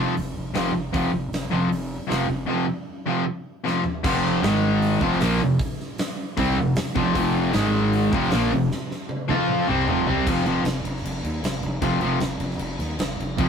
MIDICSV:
0, 0, Header, 1, 4, 480
1, 0, Start_track
1, 0, Tempo, 388853
1, 1165, Time_signature, 4, 2, 24, 8
1, 16648, End_track
2, 0, Start_track
2, 0, Title_t, "Distorted electric guitar"
2, 0, Program_c, 0, 30
2, 0, Note_on_c, 0, 41, 87
2, 0, Note_on_c, 0, 48, 81
2, 0, Note_on_c, 0, 53, 99
2, 154, Note_off_c, 0, 41, 0
2, 160, Note_off_c, 0, 48, 0
2, 164, Note_off_c, 0, 53, 0
2, 667, Note_on_c, 0, 41, 95
2, 674, Note_on_c, 0, 48, 96
2, 690, Note_on_c, 0, 53, 105
2, 869, Note_off_c, 0, 41, 0
2, 872, Note_off_c, 0, 48, 0
2, 880, Note_off_c, 0, 53, 0
2, 1149, Note_on_c, 0, 41, 97
2, 1154, Note_on_c, 0, 48, 105
2, 1170, Note_on_c, 0, 53, 102
2, 1349, Note_off_c, 0, 41, 0
2, 1352, Note_off_c, 0, 48, 0
2, 1360, Note_off_c, 0, 53, 0
2, 1860, Note_on_c, 0, 41, 96
2, 1872, Note_on_c, 0, 48, 98
2, 1886, Note_on_c, 0, 53, 91
2, 2065, Note_off_c, 0, 41, 0
2, 2071, Note_off_c, 0, 48, 0
2, 2078, Note_off_c, 0, 53, 0
2, 2557, Note_on_c, 0, 41, 89
2, 2574, Note_on_c, 0, 48, 105
2, 2582, Note_on_c, 0, 53, 95
2, 2774, Note_off_c, 0, 41, 0
2, 2782, Note_off_c, 0, 48, 0
2, 2786, Note_off_c, 0, 53, 0
2, 3043, Note_on_c, 0, 41, 102
2, 3067, Note_on_c, 0, 48, 111
2, 3069, Note_on_c, 0, 53, 106
2, 3256, Note_off_c, 0, 41, 0
2, 3268, Note_off_c, 0, 48, 0
2, 3269, Note_off_c, 0, 53, 0
2, 3778, Note_on_c, 0, 41, 82
2, 3791, Note_on_c, 0, 48, 99
2, 3800, Note_on_c, 0, 53, 100
2, 3984, Note_off_c, 0, 41, 0
2, 3990, Note_off_c, 0, 48, 0
2, 3995, Note_off_c, 0, 53, 0
2, 4491, Note_on_c, 0, 41, 97
2, 4503, Note_on_c, 0, 48, 92
2, 4510, Note_on_c, 0, 53, 92
2, 4700, Note_off_c, 0, 41, 0
2, 4706, Note_off_c, 0, 48, 0
2, 4709, Note_off_c, 0, 53, 0
2, 4980, Note_on_c, 0, 41, 105
2, 4992, Note_on_c, 0, 48, 101
2, 4992, Note_on_c, 0, 53, 105
2, 5454, Note_off_c, 0, 41, 0
2, 5459, Note_on_c, 0, 44, 76
2, 5470, Note_off_c, 0, 48, 0
2, 5470, Note_off_c, 0, 53, 0
2, 5481, Note_on_c, 0, 51, 96
2, 5487, Note_on_c, 0, 56, 102
2, 6180, Note_off_c, 0, 44, 0
2, 6185, Note_on_c, 0, 41, 107
2, 6187, Note_off_c, 0, 51, 0
2, 6192, Note_on_c, 0, 48, 102
2, 6197, Note_off_c, 0, 56, 0
2, 6203, Note_on_c, 0, 53, 103
2, 6411, Note_off_c, 0, 53, 0
2, 6418, Note_off_c, 0, 48, 0
2, 6423, Note_on_c, 0, 46, 89
2, 6426, Note_off_c, 0, 41, 0
2, 6426, Note_on_c, 0, 53, 96
2, 6436, Note_on_c, 0, 58, 109
2, 6665, Note_off_c, 0, 46, 0
2, 6667, Note_off_c, 0, 53, 0
2, 6669, Note_on_c, 0, 41, 72
2, 6672, Note_off_c, 0, 58, 0
2, 6672, Note_on_c, 0, 48, 78
2, 6867, Note_off_c, 0, 41, 0
2, 6869, Note_off_c, 0, 48, 0
2, 7864, Note_on_c, 0, 48, 87
2, 7874, Note_on_c, 0, 55, 91
2, 7885, Note_on_c, 0, 60, 96
2, 8093, Note_off_c, 0, 48, 0
2, 8105, Note_on_c, 0, 41, 74
2, 8108, Note_on_c, 0, 48, 77
2, 8110, Note_off_c, 0, 55, 0
2, 8115, Note_off_c, 0, 60, 0
2, 8304, Note_off_c, 0, 41, 0
2, 8306, Note_off_c, 0, 48, 0
2, 8579, Note_on_c, 0, 41, 101
2, 8585, Note_on_c, 0, 48, 94
2, 8603, Note_on_c, 0, 53, 110
2, 8790, Note_off_c, 0, 41, 0
2, 8799, Note_off_c, 0, 48, 0
2, 8805, Note_on_c, 0, 41, 112
2, 8808, Note_off_c, 0, 53, 0
2, 8814, Note_on_c, 0, 48, 116
2, 8823, Note_on_c, 0, 53, 120
2, 9295, Note_off_c, 0, 41, 0
2, 9299, Note_off_c, 0, 48, 0
2, 9303, Note_off_c, 0, 53, 0
2, 9303, Note_on_c, 0, 44, 86
2, 9310, Note_on_c, 0, 51, 100
2, 9313, Note_on_c, 0, 56, 95
2, 10021, Note_off_c, 0, 44, 0
2, 10026, Note_on_c, 0, 41, 92
2, 10027, Note_off_c, 0, 51, 0
2, 10029, Note_off_c, 0, 56, 0
2, 10032, Note_on_c, 0, 48, 112
2, 10044, Note_on_c, 0, 53, 106
2, 10260, Note_off_c, 0, 48, 0
2, 10264, Note_off_c, 0, 53, 0
2, 10265, Note_off_c, 0, 41, 0
2, 10265, Note_on_c, 0, 46, 104
2, 10279, Note_on_c, 0, 53, 111
2, 10283, Note_on_c, 0, 58, 114
2, 10505, Note_off_c, 0, 46, 0
2, 10512, Note_off_c, 0, 53, 0
2, 10514, Note_off_c, 0, 58, 0
2, 10516, Note_on_c, 0, 41, 77
2, 10518, Note_on_c, 0, 48, 74
2, 10710, Note_off_c, 0, 41, 0
2, 10711, Note_off_c, 0, 48, 0
2, 11458, Note_on_c, 0, 53, 94
2, 11475, Note_on_c, 0, 60, 87
2, 11481, Note_on_c, 0, 65, 110
2, 11939, Note_off_c, 0, 53, 0
2, 11942, Note_off_c, 0, 60, 0
2, 11944, Note_on_c, 0, 48, 102
2, 11949, Note_on_c, 0, 55, 97
2, 11952, Note_off_c, 0, 65, 0
2, 11957, Note_on_c, 0, 60, 106
2, 12170, Note_off_c, 0, 48, 0
2, 12177, Note_on_c, 0, 41, 86
2, 12185, Note_on_c, 0, 48, 97
2, 12188, Note_off_c, 0, 55, 0
2, 12192, Note_off_c, 0, 60, 0
2, 12193, Note_on_c, 0, 53, 104
2, 12419, Note_off_c, 0, 48, 0
2, 12422, Note_off_c, 0, 41, 0
2, 12430, Note_off_c, 0, 53, 0
2, 12433, Note_on_c, 0, 48, 90
2, 12446, Note_on_c, 0, 55, 94
2, 12451, Note_on_c, 0, 60, 102
2, 12670, Note_off_c, 0, 48, 0
2, 12676, Note_off_c, 0, 55, 0
2, 12677, Note_on_c, 0, 41, 95
2, 12679, Note_off_c, 0, 60, 0
2, 12687, Note_on_c, 0, 48, 110
2, 12700, Note_on_c, 0, 53, 103
2, 12871, Note_off_c, 0, 41, 0
2, 12876, Note_off_c, 0, 48, 0
2, 12882, Note_off_c, 0, 53, 0
2, 12904, Note_on_c, 0, 41, 90
2, 12918, Note_on_c, 0, 48, 91
2, 12931, Note_on_c, 0, 53, 115
2, 13105, Note_off_c, 0, 41, 0
2, 13112, Note_off_c, 0, 48, 0
2, 13118, Note_off_c, 0, 53, 0
2, 14589, Note_on_c, 0, 41, 91
2, 14595, Note_on_c, 0, 48, 93
2, 14601, Note_on_c, 0, 53, 110
2, 14789, Note_off_c, 0, 41, 0
2, 14792, Note_off_c, 0, 48, 0
2, 14794, Note_off_c, 0, 53, 0
2, 14827, Note_on_c, 0, 48, 103
2, 14829, Note_on_c, 0, 41, 100
2, 14838, Note_on_c, 0, 53, 95
2, 15028, Note_off_c, 0, 48, 0
2, 15029, Note_off_c, 0, 41, 0
2, 15033, Note_off_c, 0, 53, 0
2, 16527, Note_on_c, 0, 41, 104
2, 16536, Note_on_c, 0, 48, 99
2, 16541, Note_on_c, 0, 53, 124
2, 16648, Note_off_c, 0, 41, 0
2, 16648, Note_off_c, 0, 48, 0
2, 16648, Note_off_c, 0, 53, 0
2, 16648, End_track
3, 0, Start_track
3, 0, Title_t, "Fingered electric bass"
3, 0, Program_c, 1, 33
3, 228, Note_on_c, 1, 29, 88
3, 383, Note_off_c, 1, 29, 0
3, 454, Note_on_c, 1, 29, 82
3, 613, Note_off_c, 1, 29, 0
3, 694, Note_on_c, 1, 29, 82
3, 853, Note_off_c, 1, 29, 0
3, 931, Note_on_c, 1, 29, 95
3, 1091, Note_off_c, 1, 29, 0
3, 1161, Note_on_c, 1, 29, 95
3, 1325, Note_off_c, 1, 29, 0
3, 1393, Note_on_c, 1, 29, 91
3, 1559, Note_off_c, 1, 29, 0
3, 1626, Note_on_c, 1, 29, 90
3, 1795, Note_off_c, 1, 29, 0
3, 1878, Note_on_c, 1, 29, 93
3, 2043, Note_off_c, 1, 29, 0
3, 2103, Note_on_c, 1, 29, 77
3, 2435, Note_off_c, 1, 29, 0
3, 2600, Note_on_c, 1, 29, 86
3, 2764, Note_off_c, 1, 29, 0
3, 2835, Note_on_c, 1, 29, 96
3, 3000, Note_off_c, 1, 29, 0
3, 4990, Note_on_c, 1, 29, 104
3, 5442, Note_off_c, 1, 29, 0
3, 5479, Note_on_c, 1, 32, 103
3, 6151, Note_off_c, 1, 32, 0
3, 6183, Note_on_c, 1, 29, 93
3, 6415, Note_off_c, 1, 29, 0
3, 6437, Note_on_c, 1, 34, 90
3, 6662, Note_off_c, 1, 34, 0
3, 6669, Note_on_c, 1, 29, 85
3, 6898, Note_off_c, 1, 29, 0
3, 7874, Note_on_c, 1, 36, 101
3, 8100, Note_off_c, 1, 36, 0
3, 8120, Note_on_c, 1, 29, 82
3, 8343, Note_off_c, 1, 29, 0
3, 8590, Note_on_c, 1, 29, 113
3, 8818, Note_off_c, 1, 29, 0
3, 8825, Note_on_c, 1, 29, 100
3, 9278, Note_off_c, 1, 29, 0
3, 9317, Note_on_c, 1, 32, 102
3, 9988, Note_off_c, 1, 32, 0
3, 10030, Note_on_c, 1, 29, 100
3, 10257, Note_off_c, 1, 29, 0
3, 10281, Note_on_c, 1, 34, 100
3, 10503, Note_off_c, 1, 34, 0
3, 10508, Note_on_c, 1, 29, 92
3, 10736, Note_off_c, 1, 29, 0
3, 11479, Note_on_c, 1, 41, 93
3, 11926, Note_off_c, 1, 41, 0
3, 11962, Note_on_c, 1, 36, 87
3, 12184, Note_off_c, 1, 36, 0
3, 12204, Note_on_c, 1, 29, 93
3, 12420, Note_off_c, 1, 29, 0
3, 12428, Note_on_c, 1, 36, 109
3, 12657, Note_off_c, 1, 36, 0
3, 12670, Note_on_c, 1, 29, 96
3, 12863, Note_off_c, 1, 29, 0
3, 12902, Note_on_c, 1, 29, 86
3, 13098, Note_off_c, 1, 29, 0
3, 13132, Note_on_c, 1, 29, 91
3, 13332, Note_off_c, 1, 29, 0
3, 13381, Note_on_c, 1, 29, 92
3, 13578, Note_off_c, 1, 29, 0
3, 13626, Note_on_c, 1, 29, 88
3, 13821, Note_off_c, 1, 29, 0
3, 13867, Note_on_c, 1, 39, 92
3, 14062, Note_off_c, 1, 39, 0
3, 14112, Note_on_c, 1, 29, 85
3, 14305, Note_off_c, 1, 29, 0
3, 14353, Note_on_c, 1, 29, 91
3, 14546, Note_off_c, 1, 29, 0
3, 14585, Note_on_c, 1, 29, 97
3, 14781, Note_off_c, 1, 29, 0
3, 14841, Note_on_c, 1, 29, 90
3, 15031, Note_off_c, 1, 29, 0
3, 15075, Note_on_c, 1, 29, 93
3, 15267, Note_off_c, 1, 29, 0
3, 15306, Note_on_c, 1, 29, 92
3, 15502, Note_off_c, 1, 29, 0
3, 15541, Note_on_c, 1, 29, 85
3, 15739, Note_off_c, 1, 29, 0
3, 15787, Note_on_c, 1, 39, 84
3, 15983, Note_off_c, 1, 39, 0
3, 16031, Note_on_c, 1, 29, 94
3, 16226, Note_off_c, 1, 29, 0
3, 16290, Note_on_c, 1, 29, 93
3, 16478, Note_off_c, 1, 29, 0
3, 16524, Note_on_c, 1, 29, 95
3, 16648, Note_off_c, 1, 29, 0
3, 16648, End_track
4, 0, Start_track
4, 0, Title_t, "Drums"
4, 211, Note_on_c, 9, 46, 54
4, 334, Note_off_c, 9, 46, 0
4, 671, Note_on_c, 9, 46, 58
4, 686, Note_on_c, 9, 38, 114
4, 794, Note_off_c, 9, 46, 0
4, 809, Note_off_c, 9, 38, 0
4, 1161, Note_on_c, 9, 36, 110
4, 1165, Note_on_c, 9, 46, 53
4, 1285, Note_off_c, 9, 36, 0
4, 1288, Note_off_c, 9, 46, 0
4, 1641, Note_on_c, 9, 46, 55
4, 1656, Note_on_c, 9, 38, 108
4, 1764, Note_off_c, 9, 46, 0
4, 1779, Note_off_c, 9, 38, 0
4, 2127, Note_on_c, 9, 46, 60
4, 2250, Note_off_c, 9, 46, 0
4, 2600, Note_on_c, 9, 46, 57
4, 2614, Note_on_c, 9, 38, 114
4, 2723, Note_off_c, 9, 46, 0
4, 2738, Note_off_c, 9, 38, 0
4, 4527, Note_on_c, 9, 38, 56
4, 4651, Note_off_c, 9, 38, 0
4, 4740, Note_on_c, 9, 43, 81
4, 4863, Note_off_c, 9, 43, 0
4, 4991, Note_on_c, 9, 36, 111
4, 4995, Note_on_c, 9, 49, 111
4, 5114, Note_off_c, 9, 36, 0
4, 5118, Note_off_c, 9, 49, 0
4, 5252, Note_on_c, 9, 38, 34
4, 5376, Note_off_c, 9, 38, 0
4, 5469, Note_on_c, 9, 46, 70
4, 5484, Note_on_c, 9, 38, 122
4, 5593, Note_off_c, 9, 46, 0
4, 5608, Note_off_c, 9, 38, 0
4, 5949, Note_on_c, 9, 46, 61
4, 6072, Note_off_c, 9, 46, 0
4, 6185, Note_on_c, 9, 36, 102
4, 6308, Note_off_c, 9, 36, 0
4, 6327, Note_on_c, 9, 38, 36
4, 6426, Note_on_c, 9, 46, 66
4, 6441, Note_off_c, 9, 38, 0
4, 6441, Note_on_c, 9, 38, 113
4, 6549, Note_off_c, 9, 46, 0
4, 6564, Note_off_c, 9, 38, 0
4, 6904, Note_on_c, 9, 46, 56
4, 6905, Note_on_c, 9, 36, 106
4, 7027, Note_off_c, 9, 46, 0
4, 7029, Note_off_c, 9, 36, 0
4, 7161, Note_on_c, 9, 38, 32
4, 7285, Note_off_c, 9, 38, 0
4, 7384, Note_on_c, 9, 46, 61
4, 7399, Note_on_c, 9, 38, 116
4, 7508, Note_off_c, 9, 46, 0
4, 7522, Note_off_c, 9, 38, 0
4, 7869, Note_on_c, 9, 36, 104
4, 7877, Note_on_c, 9, 46, 52
4, 7992, Note_off_c, 9, 36, 0
4, 8000, Note_off_c, 9, 46, 0
4, 8339, Note_on_c, 9, 46, 68
4, 8353, Note_on_c, 9, 38, 120
4, 8462, Note_off_c, 9, 46, 0
4, 8477, Note_off_c, 9, 38, 0
4, 8588, Note_on_c, 9, 36, 105
4, 8711, Note_off_c, 9, 36, 0
4, 8831, Note_on_c, 9, 36, 99
4, 8832, Note_on_c, 9, 46, 65
4, 8954, Note_off_c, 9, 36, 0
4, 8955, Note_off_c, 9, 46, 0
4, 9299, Note_on_c, 9, 46, 65
4, 9314, Note_on_c, 9, 38, 119
4, 9422, Note_off_c, 9, 46, 0
4, 9437, Note_off_c, 9, 38, 0
4, 9791, Note_on_c, 9, 46, 58
4, 9914, Note_off_c, 9, 46, 0
4, 10032, Note_on_c, 9, 36, 113
4, 10156, Note_off_c, 9, 36, 0
4, 10161, Note_on_c, 9, 38, 37
4, 10256, Note_on_c, 9, 46, 76
4, 10271, Note_off_c, 9, 38, 0
4, 10271, Note_on_c, 9, 38, 110
4, 10380, Note_off_c, 9, 46, 0
4, 10395, Note_off_c, 9, 38, 0
4, 10758, Note_on_c, 9, 38, 68
4, 10881, Note_off_c, 9, 38, 0
4, 11002, Note_on_c, 9, 38, 59
4, 11125, Note_off_c, 9, 38, 0
4, 11223, Note_on_c, 9, 48, 83
4, 11346, Note_off_c, 9, 48, 0
4, 11470, Note_on_c, 9, 48, 81
4, 11593, Note_off_c, 9, 48, 0
4, 11702, Note_on_c, 9, 47, 83
4, 11826, Note_off_c, 9, 47, 0
4, 11950, Note_on_c, 9, 45, 78
4, 12073, Note_off_c, 9, 45, 0
4, 12193, Note_on_c, 9, 43, 101
4, 12316, Note_off_c, 9, 43, 0
4, 12429, Note_on_c, 9, 43, 84
4, 12552, Note_off_c, 9, 43, 0
4, 12674, Note_on_c, 9, 36, 117
4, 12678, Note_on_c, 9, 49, 106
4, 12678, Note_on_c, 9, 57, 72
4, 12798, Note_off_c, 9, 36, 0
4, 12801, Note_off_c, 9, 49, 0
4, 12801, Note_off_c, 9, 57, 0
4, 12916, Note_on_c, 9, 57, 60
4, 13040, Note_off_c, 9, 57, 0
4, 13146, Note_on_c, 9, 57, 85
4, 13161, Note_on_c, 9, 38, 108
4, 13270, Note_off_c, 9, 57, 0
4, 13284, Note_off_c, 9, 38, 0
4, 13392, Note_on_c, 9, 57, 70
4, 13516, Note_off_c, 9, 57, 0
4, 13538, Note_on_c, 9, 38, 33
4, 13646, Note_on_c, 9, 57, 81
4, 13662, Note_off_c, 9, 38, 0
4, 13769, Note_off_c, 9, 57, 0
4, 13881, Note_on_c, 9, 57, 62
4, 14005, Note_off_c, 9, 57, 0
4, 14119, Note_on_c, 9, 57, 93
4, 14134, Note_on_c, 9, 38, 116
4, 14243, Note_off_c, 9, 57, 0
4, 14257, Note_off_c, 9, 38, 0
4, 14355, Note_on_c, 9, 57, 57
4, 14479, Note_off_c, 9, 57, 0
4, 14588, Note_on_c, 9, 57, 86
4, 14589, Note_on_c, 9, 36, 104
4, 14711, Note_off_c, 9, 57, 0
4, 14713, Note_off_c, 9, 36, 0
4, 14823, Note_on_c, 9, 57, 58
4, 14946, Note_off_c, 9, 57, 0
4, 15062, Note_on_c, 9, 57, 76
4, 15076, Note_on_c, 9, 38, 107
4, 15185, Note_off_c, 9, 57, 0
4, 15200, Note_off_c, 9, 38, 0
4, 15305, Note_on_c, 9, 57, 67
4, 15428, Note_off_c, 9, 57, 0
4, 15442, Note_on_c, 9, 38, 29
4, 15545, Note_on_c, 9, 57, 74
4, 15566, Note_off_c, 9, 38, 0
4, 15668, Note_off_c, 9, 57, 0
4, 15797, Note_on_c, 9, 57, 59
4, 15812, Note_on_c, 9, 38, 35
4, 15920, Note_off_c, 9, 57, 0
4, 15935, Note_off_c, 9, 38, 0
4, 16033, Note_on_c, 9, 57, 79
4, 16048, Note_on_c, 9, 38, 125
4, 16156, Note_off_c, 9, 57, 0
4, 16171, Note_off_c, 9, 38, 0
4, 16298, Note_on_c, 9, 57, 61
4, 16421, Note_off_c, 9, 57, 0
4, 16522, Note_on_c, 9, 36, 114
4, 16522, Note_on_c, 9, 57, 72
4, 16645, Note_off_c, 9, 36, 0
4, 16645, Note_off_c, 9, 57, 0
4, 16648, End_track
0, 0, End_of_file